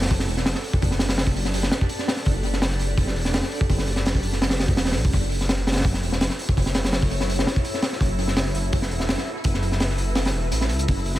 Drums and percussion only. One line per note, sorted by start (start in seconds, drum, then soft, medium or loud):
0.02 snare loud
0.02 open hi-hat medium
0.06 snare medium
0.06 open hi-hat medium
0.10 kick loud
0.10 open hi-hat loud
0.20 snare medium
0.29 open hi-hat medium
0.37 snare soft
0.46 snare loud
0.46 open hi-hat medium
0.55 snare medium
0.64 open hi-hat medium
0.73 kick loud
0.82 kick loud
0.82 open hi-hat medium
0.91 snare soft
0.99 snare loud
0.99 open hi-hat medium
1.09 snare loud
1.09 open hi-hat medium
1.18 snare loud
1.18 open hi-hat medium
1.27 kick loud
1.36 open hi-hat medium
1.45 snare soft
1.54 open hi-hat medium
1.63 snare medium
1.72 snare loud
1.72 open hi-hat medium
1.81 kick medium
1.89 open hi-hat medium
1.99 snare soft
2.08 snare loud
2.08 open hi-hat medium
2.17 snare medium
2.25 kick loud
2.25 open hi-hat medium
2.43 open hi-hat medium
2.53 snare soft
2.62 snare loud
2.62 open hi-hat medium
2.71 snare soft
2.79 open hi-hat medium
2.98 kick loud
2.98 open hi-hat medium
3.07 snare medium
3.16 open hi-hat medium
3.25 snare soft
3.34 snare loud
3.34 open hi-hat medium
3.42 snare medium
3.52 open hi-hat medium
3.61 kick loud
3.70 kick loud
3.70 open hi-hat medium
3.78 snare medium
3.88 open hi-hat medium
3.96 snare medium
4.06 snare loud
4.06 open hi-hat medium
4.15 kick loud
4.23 open hi-hat medium
4.33 snare soft
4.42 snare loud
4.42 open hi-hat medium
4.50 snare loud
4.50 open hi-hat medium
4.59 snare loud
4.59 open hi-hat medium
4.68 kick loud
4.77 snare loud
4.77 open hi-hat medium
4.85 snare medium
4.85 open hi-hat medium
4.91 snare medium
4.91 open hi-hat medium
4.95 open hi-hat medium
5.04 kick loud
5.04 open hi-hat medium
5.13 kick loud
5.13 open hi-hat medium
5.32 open hi-hat medium
5.41 snare soft
5.49 snare loud
5.49 open hi-hat medium
5.58 snare soft
5.67 snare medium
5.67 open hi-hat medium
5.72 snare medium
5.72 open hi-hat medium
5.76 snare medium
5.76 open hi-hat medium
5.81 kick loud
5.81 snare medium
5.81 open hi-hat medium
5.86 open hi-hat medium
5.94 snare medium
6.03 open hi-hat medium
6.12 snare medium
6.21 snare loud
6.21 open hi-hat medium
6.30 snare medium
6.39 open hi-hat medium
6.49 kick loud
6.57 kick loud
6.57 open hi-hat medium
6.66 snare medium
6.74 snare loud
6.74 open hi-hat medium
6.84 snare medium
6.84 open hi-hat medium
6.92 snare loud
6.92 open hi-hat medium
7.02 kick medium
7.11 open hi-hat medium
7.21 snare soft
7.30 open hi-hat medium
7.39 snare medium
7.47 snare loud
7.47 open hi-hat medium
7.56 kick loud
7.65 open hi-hat medium
7.74 snare soft
7.82 snare loud
7.82 open hi-hat medium
7.92 snare medium
8.01 kick loud
8.01 open hi-hat medium
8.19 open hi-hat medium
8.28 snare soft
8.37 snare loud
8.37 open hi-hat medium
8.46 snare soft
8.55 open hi-hat medium
8.73 kick loud
8.73 open hi-hat medium
8.82 snare medium
8.91 open hi-hat medium
9.00 snare medium
9.09 snare loud
9.09 open hi-hat medium
9.18 snare medium
9.44 kick loud
9.44 open hi-hat medium
9.54 snare medium
9.63 open hi-hat medium
9.72 snare soft
9.80 snare loud
9.80 open hi-hat medium
9.89 snare soft
9.98 open hi-hat medium
10.15 snare loud
10.15 open hi-hat medium
10.25 snare loud
10.25 open hi-hat medium
10.52 open hi-hat medium
10.61 snare soft
10.69 open hi-hat medium
10.79 closed hi-hat soft
10.88 kick loud
10.88 open hi-hat medium
11.06 open hi-hat medium
11.15 snare soft